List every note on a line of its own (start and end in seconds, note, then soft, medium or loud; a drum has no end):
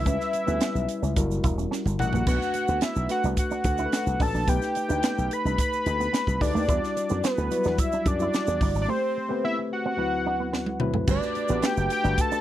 0.00 1.44 E5 loud
0.05 0.17 C#2 medium
0.05 0.38 G3 medium
0.05 0.38 C#4 medium
0.05 0.15 C#4 medium
0.05 0.39 E4 medium
0.05 0.39 B4 medium
0.05 kick loud
0.05 closed hi-hat medium
0.05 shaker medium
0.21 snare soft
0.21 shaker soft
0.33 muted clean electric guitar stroke soft
0.33 closed hi-hat medium
0.33 shaker soft
0.47 0.58 D2 medium
0.47 1.15 G3 medium
0.47 0.55 B3 medium
0.47 1.16 C#4 medium
0.47 1.15 E4 medium
0.47 1.17 B4 loud
0.47 shaker soft
0.61 0.69 B3 medium
0.61 snare loud
0.61 closed hi-hat medium
0.61 shaker medium
0.75 0.86 B1 medium
0.75 muted clean electric guitar stroke soft
0.75 shaker soft
0.89 closed hi-hat medium
0.89 shaker soft
1.02 1.13 C#2 medium
1.02 1.11 C#4 medium
1.02 shaker soft
1.16 1.38 F#1 loud
1.16 1.83 G3 medium
1.16 1.83 E4 medium
1.16 1.83 F#4 medium
1.16 1.83 A#4 medium
1.16 muted clean electric guitar stroke soft
1.16 kick medium
1.16 closed hi-hat medium
1.16 shaker medium
1.31 shaker soft
1.44 1.65 E1 medium
1.44 1.52 E4 medium
1.44 kick medium
1.44 closed hi-hat medium
1.44 shaker soft
1.58 1.66 C#4 medium
1.58 shaker soft
1.71 1.80 C#4 medium
1.71 snare medium
1.71 shaker medium
1.85 1.96 G1 medium
1.85 high tom medium
1.85 shaker medium
1.99 2.10 A1 medium
1.99 2.21 G3 medium
1.99 2.21 E4 medium
1.99 2.21 F#4 medium
1.99 2.21 A#4 medium
1.99 2.25 F#5 medium
1.99 muted clean electric guitar stroke soft
1.99 mid tom medium
1.99 shaker soft
2.13 2.24 A#1 medium
2.13 2.22 A#3 medium
2.13 floor tom medium
2.13 shaker soft
2.26 2.38 B1 medium
2.26 2.92 A3 medium
2.26 2.36 B3 medium
2.26 2.92 D4 medium
2.26 2.92 F#4 medium
2.26 2.92 B4 medium
2.26 2.85 F#5 loud
2.26 kick loud
2.26 crash medium
2.26 shaker medium
2.41 snare soft
2.41 shaker soft
2.54 muted clean electric guitar stroke soft
2.54 closed hi-hat medium
2.54 shaker soft
2.68 2.79 D2 medium
2.68 2.77 B3 medium
2.68 shaker soft
2.81 2.91 B3 medium
2.81 3.10 E5 loud
2.81 snare loud
2.81 closed hi-hat medium
2.81 shaker medium
2.96 3.07 B1 medium
2.96 muted clean electric guitar stroke soft
2.96 shaker soft
3.09 3.63 A3 medium
3.09 3.63 D4 medium
3.09 3.64 F#4 medium
3.09 3.64 B4 medium
3.09 3.23 F#5 medium
3.09 snare soft
3.09 closed hi-hat medium
3.09 shaker soft
3.24 3.34 C2 medium
3.24 3.33 D4 medium
3.24 shaker soft
3.37 4.24 F#5 loud
3.37 kick medium
3.37 closed hi-hat medium
3.37 shaker medium
3.51 3.60 D4 medium
3.51 shaker soft
3.64 3.86 D2 medium
3.64 muted clean electric guitar stroke soft
3.64 kick medium
3.64 closed hi-hat medium
3.64 shaker soft
3.78 4.32 A3 medium
3.78 4.32 D4 medium
3.78 3.87 E4 medium
3.78 4.33 F#4 medium
3.78 3.86 A4 medium
3.78 shaker soft
3.86 4.36 B4 medium
3.92 muted clean electric guitar stroke soft
3.92 snare loud
3.92 closed hi-hat medium
3.92 shaker medium
4.07 4.17 C2 medium
4.07 shaker medium
4.20 4.31 A1 medium
4.20 4.29 D4 medium
4.20 4.50 A5 loud
4.20 kick medium
4.20 open hi-hat medium
4.20 shaker soft
4.34 4.45 A#1 medium
4.34 4.43 D4 medium
4.34 shaker soft
4.47 4.58 B1 medium
4.47 4.80 A3 medium
4.47 4.57 B3 medium
4.47 4.80 D#4 medium
4.47 4.80 G4 medium
4.47 4.80 B4 medium
4.47 5.34 G5 loud
4.47 kick loud
4.47 closed hi-hat medium
4.47 shaker medium
4.62 snare soft
4.62 shaker soft
4.75 muted clean electric guitar stroke soft
4.75 closed hi-hat medium
4.75 shaker soft
4.88 5.00 D2 medium
4.88 5.75 A3 medium
4.88 4.98 D4 medium
4.88 5.75 D#4 medium
4.88 5.75 G4 medium
4.88 5.75 B4 medium
4.88 shaker medium
5.03 5.12 B3 medium
5.03 snare loud
5.03 closed hi-hat medium
5.03 shaker medium
5.18 5.28 B1 medium
5.18 muted clean electric guitar stroke soft
5.18 shaker soft
5.31 5.59 B5 loud
5.31 closed hi-hat medium
5.31 shaker soft
5.45 5.55 C2 medium
5.45 5.54 D4 medium
5.45 shaker soft
5.58 6.43 B5 loud
5.58 muted clean electric guitar stroke soft
5.58 kick medium
5.58 closed hi-hat medium
5.58 shaker medium
5.73 shaker soft
5.86 6.07 D2 medium
5.86 5.95 D#4 medium
5.86 closed hi-hat medium
5.86 shaker soft
6.00 6.08 B3 medium
6.00 shaker soft
6.13 6.21 B3 medium
6.13 snare medium
6.13 closed hi-hat medium
6.13 shaker medium
6.27 6.38 C2 medium
6.27 kick medium
6.27 shaker medium
6.40 6.51 D2 medium
6.40 6.62 A3 medium
6.40 6.62 D#4 medium
6.40 6.62 G4 medium
6.40 6.63 B4 medium
6.40 7.26 D5 loud
6.40 muted clean electric guitar stroke soft
6.40 kick medium
6.40 open hi-hat medium
6.40 shaker soft
6.55 6.66 D#2 medium
6.55 6.63 A3 medium
6.55 shaker soft
6.68 6.79 E2 medium
6.68 7.32 G3 medium
6.68 7.33 E4 medium
6.68 6.77 E4 medium
6.68 7.33 F#4 medium
6.68 7.33 D5 medium
6.68 kick loud
6.68 closed hi-hat medium
6.68 shaker medium
6.84 snare soft
6.84 shaker soft
6.96 muted clean electric guitar stroke soft
6.96 closed hi-hat medium
6.96 shaker soft
7.09 7.21 F#2 medium
7.09 7.18 B3 medium
7.09 shaker soft
7.24 7.32 B3 medium
7.24 7.81 B4 medium
7.24 snare loud
7.24 closed hi-hat medium
7.24 shaker medium
7.38 7.48 D2 loud
7.38 muted clean electric guitar stroke soft
7.38 shaker soft
7.51 7.57 F#3 medium
7.51 8.04 E4 medium
7.51 8.05 F#4 medium
7.51 8.05 D5 medium
7.51 closed hi-hat medium
7.51 shaker soft
7.57 8.08 G3 medium
7.64 7.76 E2 medium
7.64 7.73 D4 medium
7.64 snare soft
7.64 shaker soft
7.78 8.09 E5 loud
7.78 kick loud
7.78 closed hi-hat medium
7.78 shaker medium
7.92 8.01 D4 medium
7.92 shaker soft
8.06 8.27 F#2 loud
8.06 8.81 D5 loud
8.06 muted clean electric guitar stroke soft
8.06 kick loud
8.06 closed hi-hat medium
8.06 shaker medium
8.19 8.73 G3 medium
8.19 8.73 E4 medium
8.19 8.29 E4 medium
8.19 8.73 F#4 medium
8.19 8.74 D5 medium
8.19 shaker soft
8.34 muted clean electric guitar stroke soft
8.34 snare loud
8.34 closed hi-hat medium
8.34 shaker medium
8.47 8.58 E2 loud
8.47 shaker medium
8.61 8.71 G1 medium
8.61 8.70 D4 medium
8.61 kick loud
8.61 open hi-hat medium
8.61 shaker soft
8.75 8.85 G#1 medium
8.75 8.84 D4 medium
8.75 shaker soft
8.82 8.91 D5 medium
8.88 9.20 A3 medium
8.88 8.97 A3 loud
8.88 9.20 C4 medium
8.88 9.20 G4 medium
8.88 9.21 C5 medium
8.88 9.44 C5 medium
9.17 muted clean electric guitar stroke soft
9.28 9.98 A3 medium
9.28 9.38 B3 medium
9.28 9.96 C4 medium
9.28 9.98 G4 medium
9.28 9.97 B4 medium
9.44 9.52 B3 medium
9.44 9.57 E5 medium
9.59 muted clean electric guitar stroke soft
9.73 10.78 F#5 loud
9.85 9.94 C4 medium
9.97 10.63 D2 medium
9.97 10.64 F#3 medium
9.97 10.64 C4 medium
9.97 10.64 E4 medium
9.97 10.64 B4 medium
9.97 muted clean electric guitar stroke soft
10.26 10.35 D4 medium
10.40 10.48 B3 medium
10.53 10.61 B3 medium
10.53 snare medium
10.66 high tom medium
10.80 11.02 D2 medium
10.80 11.02 F#3 medium
10.80 11.02 C4 medium
10.80 11.02 E4 medium
10.80 11.02 B4 loud
10.80 muted clean electric guitar stroke soft
10.80 mid tom medium
10.94 11.03 A3 medium
10.94 floor tom medium
11.07 11.18 G1 medium
11.07 11.17 G3 medium
11.07 11.40 A3 medium
11.07 11.40 D4 medium
11.07 11.40 F#4 medium
11.07 11.40 G4 medium
11.07 11.40 B4 medium
11.07 11.67 D5 medium
11.07 kick loud
11.07 crash medium
11.07 shaker medium
11.22 snare soft
11.22 shaker soft
11.35 muted clean electric guitar stroke soft
11.35 closed hi-hat medium
11.48 11.60 A1 medium
11.48 11.92 A3 medium
11.48 11.58 B3 medium
11.48 11.92 D4 medium
11.48 11.92 F#4 medium
11.48 11.92 G4 medium
11.48 11.93 B4 medium
11.48 shaker medium
11.62 11.71 B3 medium
11.62 11.91 G5 loud
11.62 snare loud
11.62 closed hi-hat medium
11.62 shaker medium
11.77 11.87 F#1 medium
11.77 muted clean electric guitar stroke soft
11.77 shaker soft
11.90 12.22 G5 loud
11.90 closed hi-hat medium
11.90 shaker soft
12.03 12.15 G1 medium
12.03 12.41 A3 medium
12.03 12.41 D4 medium
12.03 12.13 D4 medium
12.03 12.41 F#4 medium
12.03 12.41 G4 medium
12.03 12.41 B4 medium
12.03 shaker soft
12.18 12.41 A5 loud
12.18 kick medium
12.18 closed hi-hat medium
12.18 shaker medium
12.32 12.40 D4 medium
12.32 shaker soft